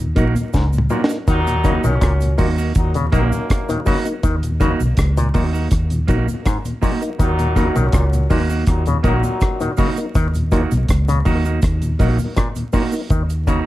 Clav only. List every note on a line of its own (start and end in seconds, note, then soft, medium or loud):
0.54 0.66 G#2 medium
0.90 1.02 A#2 medium
1.28 1.39 D#3 medium
1.64 1.76 C#3 medium
1.84 1.95 D#3 medium
2.01 2.13 A#2 medium
2.38 2.50 A#2 medium
2.95 3.06 C#3 medium
3.13 3.24 D#3 medium
3.69 3.80 D#3 medium
3.86 3.98 C#3 medium
4.23 4.35 D#3 medium
4.61 4.72 C#3 medium
5.17 5.28 A#2 medium
5.34 5.46 A#2 medium
6.45 6.57 G#2 medium
6.82 6.94 A#2 medium
7.19 7.31 D#3 medium
7.56 7.68 C#3 medium
7.76 7.86 D#3 medium
7.93 8.05 A#2 medium
8.30 8.42 A#2 medium
8.87 8.98 C#3 medium
9.04 9.16 D#3 medium
9.61 9.71 D#3 medium
9.78 9.90 C#3 medium
10.15 10.27 D#3 medium
10.52 10.64 A#2 medium
11.08 11.19 C#3 medium
11.25 11.37 D#3 medium
12.36 12.48 A#2 medium
12.73 12.85 A#2 medium
13.10 13.22 D#3 medium
13.47 13.59 C#3 medium